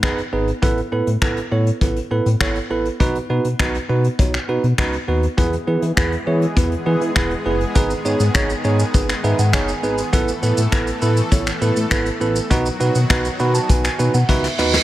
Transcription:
0.03 F#1 B3 D#4 G#4 B4, finger snap, kick, closed hi-hat
0.18 closed hi-hat
0.33 G#1 B3 D#4 G#4 B4
0.48 closed hi-hat
0.62 A1 B3 E4 A4 B4, kick, closed hi-hat
0.77 closed hi-hat
0.92 A2 B3 E4 A4 B4
1.07 A2, closed hi-hat
1.22 A1 B3 E4 A4 B4, finger snap, kick, closed hi-hat
1.37 closed hi-hat
1.51 A2 B3 E4 A4 C#5
1.66 closed hi-hat
1.81 A1 B3 E4 A4 B4, kick, closed hi-hat
1.96 closed hi-hat
2.11 A2 B3 E4 A4 B4
2.26 A2, closed hi-hat
2.41 G#1 B3 E4 A4 C#5, finger snap, kick, closed hi-hat
2.55 closed hi-hat
2.70 A1 B3 E4 A4 B4
2.85 closed hi-hat
3.00 B1 B3 D#4 F#4 B4, kick, closed hi-hat
3.15 closed hi-hat
3.30 B2 B3 D#4 F#4 B4
3.45 B2, closed hi-hat
3.59 B1 B3 D#4 F#4 B4, finger snap, kick, closed hi-hat
3.74 closed hi-hat
3.89 B2 B3 D#4 F#4 B4
4.04 closed hi-hat
4.19 B1 B3 D#4 F#4 C#5, kick, closed hi-hat
4.34 finger snap, closed hi-hat
4.49 B2 B3 D#4 F#4 B4
4.64 B2, closed hi-hat
4.78 C#2 B3 D#4 F#4 B4, finger snap, kick, closed hi-hat
4.93 closed hi-hat
5.08 D#2 B3 D#4 F#4 B4
5.23 closed hi-hat
5.38 E2 E3 G#3 B3 E4 G#4 B4, kick, closed hi-hat
5.53 closed hi-hat
5.67 E3 B3 E4 G#4 B4
5.82 E3, closed hi-hat
5.97 E2 B3 E4 G#4 B4, finger snap, kick, closed hi-hat
6.12 closed hi-hat
6.27 E3 B3 E4 G#4 C#5
6.42 closed hi-hat
6.56 E2 B3 E4 G#4 B4, kick, closed hi-hat
6.72 closed hi-hat
6.86 E3 B3 E4 G#4 B4
7.01 E3, closed hi-hat
7.16 E1 B3 E4 G#4 B4, finger snap, kick, closed hi-hat
7.31 closed hi-hat
7.45 F#1 B3 E4 G#4 B4
7.61 closed hi-hat
7.75 G#1 D#3 B3 D#4 G#4 B4, kick, closed hi-hat, shaker
7.90 closed hi-hat, shaker
8.05 G#2 B3 D#4 G#4 C#5, shaker
8.20 G#2, closed hi-hat, shaker
8.34 G#1 B3 D#4 G#4 C#5, finger snap, kick, closed hi-hat, shaker
8.50 closed hi-hat, shaker
8.64 G#2 B3 D#4 G#4 C#5, shaker
8.79 closed hi-hat, shaker
8.94 G#1 B3 D#4 G#4 B4, kick, closed hi-hat, shaker
9.09 finger snap, closed hi-hat, shaker
9.24 G#2 B3 D#4 G#4 B4 E5, shaker
9.39 G#2 F#5, closed hi-hat, shaker
9.53 F#1 B3 D#4 G#4 C#5 G#5, finger snap, kick, closed hi-hat, shaker
9.68 closed hi-hat, shaker
9.83 G#1 B3 D#4 G#4 B4, shaker
9.98 closed hi-hat, shaker
10.13 A1 E3 A3 B3 E4 A4 B4, kick, closed hi-hat, shaker
10.28 closed hi-hat, shaker
10.42 A2 B3 E4 A4 B4, shaker
10.57 A2, closed hi-hat, shaker
10.72 A1 B3 E4 A4 B4, finger snap, kick, closed hi-hat, shaker
10.87 closed hi-hat, shaker
11.02 A2 B3 E4 A4 B4, shaker
11.17 closed hi-hat, shaker
11.31 A1 B3 E4 A4 C#5, kick, closed hi-hat, shaker
11.47 finger snap, closed hi-hat, shaker
11.61 A2 B3 E4 A4 B4, shaker
11.76 A2, closed hi-hat, shaker
11.91 G#1 B3 E4 A4 B4, finger snap, kick, closed hi-hat, shaker
12.06 closed hi-hat, shaker
12.21 A1 B3 E4 A4 B4, shaker
12.36 closed hi-hat, shaker
12.50 B1 D#3 F#3 B3 D#4 F#4 B4, kick, closed hi-hat, shaker
12.66 closed hi-hat, shaker
12.80 B2 B3 D#4 F#4 B4, shaker
12.95 B2, closed hi-hat, shaker
13.10 B1 B3 D#4 F#4 B4, finger snap, kick, closed hi-hat, shaker
13.25 closed hi-hat, shaker
13.39 B2 B3 D#4 F#4 B4 B5, shaker
13.55 A5, closed hi-hat, shaker
13.69 B1 B3 D#4 F#4 B4 G#5, kick, closed hi-hat, reverse cymbal, shaker
13.85 finger snap, closed hi-hat, shaker
13.99 B2 B3 D#4 F#4 B4, shaker
14.14 B2 F#5, closed hi-hat, shaker
14.29 C#2 B3 D#4 F#4 B4 E5, kick, snare
14.44 snare
14.58 D#2 B3 D#4 F#4 B4 D#5, snare
14.74 snare

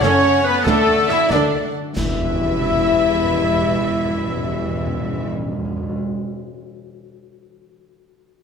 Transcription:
Already playing: F#2 A3 C#4 C#5 F#5
0.01 F#1 C#4 F#4 A4 C#5, concert bass drum, snare
0.24 F#1 A4
0.44 A3 B3 B4
0.64 D2 D3 A3 D4 A4 D5, concert bass drum, snare
0.68 A3
0.88 D2 D4 A4
1.07 D2 E4 F#4 A4 E5, snare
1.30 D2 D4 A4 D5, concert bass drum, snare
1.52 D2 F#4 A4
1.76 D4
1.96 E2 E3 E4 G4 B4 E5, concert bass drum, snare, crash
2.04 E2 G3
2.10 E2 B3
2.16 E2 E4
2.22 E2 B4
2.29 E2
2.35 E2
2.42 E2
2.49 E2
2.55 E2
2.61 E2, high tom
2.68 E2, mid tom
2.74 E2
2.81 E2
2.87 E2
2.93 E2
2.99 E2
3.05 E2
3.12 E2
3.18 E2
3.24 E2
3.31 E2
3.37 E2
3.44 E2
3.49 E2
3.56 E2
3.62 E2
3.69 E2
3.74 E2
3.81 E2
3.87 E2
3.93 E2
3.99 E2
4.05 E2
4.12 E2
4.18 E2
4.24 E2
4.29 E2
4.37 E2
4.42 E2
4.48 E2
4.55 E2
4.62 E2
4.68 E2
4.74 E2
4.80 E2
4.86 E2
4.93 E2
5.00 E2
5.07 E2
5.13 E2
5.20 E2
5.26 E2
5.33 E2
5.39 E2
5.45 E2
5.52 E2
5.59 E2
5.65 E2
5.71 E2
5.77 E2
5.83 E2
5.89 E2
5.96 E2

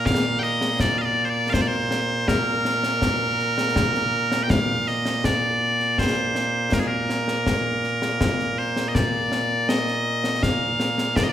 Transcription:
Already playing: A#2 A#3
0.06 F5, concert bass drum, snare
0.39 D#5 G5, snare
0.61 snare
0.80 D5, concert bass drum, snare
0.98 D#5 F5
1.05 D5
1.25 C5
1.29 D5
1.50 C5 F5
1.54 concert bass drum, snare
1.61 D5
1.68 C5
1.91 snare
2.28 A#4, concert bass drum, snare
2.65 snare
2.83 snare
3.02 concert bass drum, snare
3.39 snare
3.58 snare
3.76 concert bass drum, snare
3.95 snare
4.32 snare
4.43 G5
4.50 F5, concert bass drum, snare
4.87 D#5, snare
5.05 snare
5.24 D5, concert bass drum, snare
5.80 snare
5.98 C5, concert bass drum, snare
6.35 snare
6.72 A#4, concert bass drum, snare
6.80 G#4
6.88 A#4
7.10 snare
7.28 snare
7.46 concert bass drum, snare
7.84 snare
8.02 snare
8.21 concert bass drum, snare
8.39 snare
8.58 C5
8.76 snare
8.88 D#5
8.95 D5, concert bass drum, snare
9.32 snare
9.69 D#5, snare
9.87 snare
10.24 snare
10.43 F5, concert bass drum, snare
10.80 snare
10.98 snare
11.16 D5, concert bass drum, snare
11.23 D#5
11.29 D5

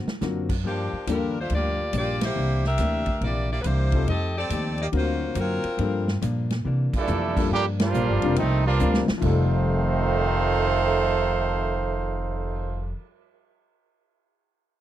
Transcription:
0.06 muted upright bass stroke, snare
0.21 F#2 D3 F#3 A#3 C4 D4 F4 F#4 A#4, snare, hi-hat pedal
0.49 kick, crash
0.63 G2 F3 A#3 D4, kick
0.67 F3 D4 G4
0.93 muted upright bass stroke
1.07 D#2 G2 F3 G3 A#3 D4 F4 A4, kick, hi-hat pedal, ride
1.11 G3 D4 F4 A#4
1.41 A3 D4 F4 C5
1.50 D2 G2 F3 A#3 D4, kick, ride
1.55 A#3 F4 G4 D5
1.93 A#1 G2 F3 A#3 D4, kick, hi-hat pedal, ride
1.98 A#3 F4 G4 D5
2.21 E4 G4 C5, snare, ride
2.25 A#3
2.35 C2 C3 E3 A#3 D4
2.64 D4 G4 A#4 E5, snare
2.78 D2 C3 E3 A#3, kick, snare, hi-hat pedal, ride
2.82 D4
3.06 kick, ride
3.21 A#1 C3 E3 A#3 D4 E4 G4 D5, kick, ride
3.52 A#3 E4 G4 D5
3.62 C2 C3 A#3 B4 C5, kick, hi-hat pedal, ride
3.66 E3 A#3 D4 E4 G4
3.92 G3 C4 D#4 F4 A4, kick, ride
4.07 F2 F3 A3 C4 D#4 G4 A4 D#5, kick, ride
4.11 G4
4.37 C4 G4 A4 D5
4.50 D#2 F3 A3 D#4, kick, hi-hat pedal, ride
4.54 G4
4.78 A#3 D#4, ride
4.82 G4 D5
4.92 D2 D3 F#3 A#3 C4 D4 F#4 A#4 F5, kick, ride
4.97 A#3 F4 F#4 C5
5.34 F#2 D3 A#3 C4 F#4, kick, hi-hat pedal, ride
5.40 F#3 C4 F4 A#4
5.64 muted upright bass stroke, ride
5.77 G2 F3 G3 A#3 D4 F4 A4, kick, ride
6.08 snare
6.22 G2 A#2 F3 A#3 D4, kick, hi-hat pedal, ride
6.50 snare, ride
6.65 C3 E3 A#3 D4
6.93 A#2 E3 A3, muted upright bass stroke, kick, crash
6.97 G3 D4 E4 A4
7.07 F2 C3 E3 A#3 D4, hi-hat pedal
7.36 G3 A#3 D4 F4 A4, kick, crash
7.51 G2 A#2 D3 F3 G3 A#3 D4 G4, kick
7.79 A#2 D3 F3, snare, ride
7.83 G3 A#3 D4 F4
7.94 A#1 G2 F3 A#3 D4, hi-hat pedal
8.09 G1
8.22 F1 G3 C4 D4 F4 A#4, ride
8.36 C2 C3 D#3 A3 C4 D#4, kick, ride
8.40 F3 A#3 D4
8.65 G2 A#2 F3 G3 A#3 D4 F4
8.79 D2 C3 F3 G3 A#3 C4 D4 F4 A#4, hi-hat pedal
8.94 snare
9.08 muted upright bass stroke, snare
9.18 F1 F2 F3
9.22 F2 C3 D#3 G3 A3 D#4 A4 C5 D5 F5, kick, crash
9.27 A3 D#4 A4
9.50 cymbal swell

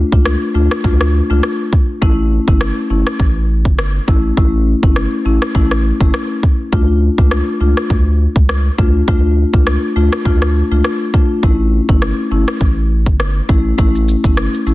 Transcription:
0.12 C#2 A3 D4 F4, kick
0.26 cross-stick
0.55 D2 A3 D4 F4
0.71 cross-stick
0.84 D2 A3 D4 F4, kick
1.01 cross-stick
1.30 C#2 A3 D4 F4
1.43 cross-stick
1.73 kick
2.02 A1 A3 C#4 E4, kick
2.48 G1 A3 C#4 E4, kick
2.61 cross-stick
2.90 G1 A3 C#4 E4
3.07 cross-stick
3.20 A1, kick
3.65 G1, kick
3.79 cross-stick
4.08 A1 A3 C#4 E4, kick
4.37 A1 A3 C#4 E4, kick
4.83 G1 A3 C#4 E4, kick
4.96 cross-stick
5.25 A1 A3 C#4 E4
5.42 cross-stick
5.55 A1 A3 C#4 E4, kick
5.71 cross-stick
6.01 G1 A3 C#4 E4, kick
6.14 cross-stick
6.43 kick
6.72 D2 A3 D4 F4, kick
7.18 C#2 A3 D4 F4, kick
7.31 cross-stick
7.60 C#2 A3 D4 F4
7.77 cross-stick
7.90 D2, kick
8.36 C#2, kick
8.49 cross-stick
8.78 D2 A3 D4 F4, kick
9.08 D2 A3 D4 F4, kick
9.53 C#2 A3 D4 F4, kick
9.67 cross-stick
9.96 D2 A3 D4 F4
10.13 cross-stick
10.25 D2 A3 D4 F4, kick
10.42 cross-stick
10.71 C#2 A3 D4 F4
10.84 cross-stick
11.14 A3 D4 F4, kick
11.43 A1 A3 C#4 E4, kick
11.89 G1 A3 C#4 E4, kick
12.02 cross-stick
12.31 G1 A3 C#4 E4
12.48 cross-stick
12.61 A1, kick
13.06 G1, kick
13.20 cross-stick
13.49 A1 A3 C#4 E4, kick
13.78 A1 A3 C#4 E4, kick, shaker
13.95 shaker
14.08 shaker
14.24 G1 A3 C#4 E4, kick, shaker
14.37 cross-stick, shaker
14.54 shaker
14.66 A1 A3 C#4 E4, shaker

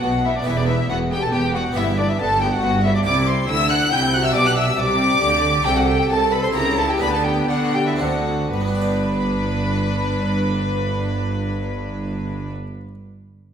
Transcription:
Already playing: B3 D4 F#4 G4 F#5
0.03 B1 B2 B3
0.25 B3 E4 E5
0.36 D4 D5
0.42 B3 E4 G4 E5
0.46 E1 E2 B3 E4 E5
0.57 D4 D5
0.67 B3 E4 E5
0.89 E1 E2 B3 F#4 F#5
1.10 B3 G4 G5
1.22 A4 A5
1.32 E1 E2 B3 G4 G5
1.54 B3 F#4 F#5
1.72 G1 B3 E4 G4 E5
1.76 G2 B3 E4 E5
1.98 B3 D4 D5
2.09 E4 E5
2.19 G1 G2 B3 A4 A5
2.41 B3 G4 G5
2.51 F#4 F#5
2.62 G1 G2 B3
2.84 B3 E4 E5
2.95 D4 D5
3.03 C2 C3 E4 G4 D5 D6
3.27 C5 C6
3.48 D2 D3 E4 E5 E6
3.70 F#5 F#6
3.91 C2 C3 E4 G5 G6
4.13 F#4 F#5 F#6
4.25 E5 E6
4.32 B1 B2 D4 G4 D5 D6
4.36 D6
4.46 F#5 F#6
4.57 E5 E6
4.78 C2 C3 G4 D5 D6
5.21 D2 D3
5.62 C2 C3 E4 A4 G5
5.66 G4
5.76 F#4 F#5
5.87 G4 G5
6.09 C2 A4 A5
6.32 B4 B5
6.43 C5 C6
6.52 C#2 C#3 E4 G4 A#4 A#5
6.78 A4 A5
6.90 G4 G5
6.98 D2 D3 B3 D4 G4 B4 B5
7.02 D3 B3
7.13 A4 A5
7.24 G4 G5
7.49 D3 D4 F#4 F#5
7.75 G4 G5
7.87 E4 E5
7.96 D2 D3 C4 D4 A4 F#5
8.00 D3 C4 F#4
8.53 G1 G2 G3 D4 B4 B5
8.61 B3
8.67 D4
8.75 G4
8.81 D5

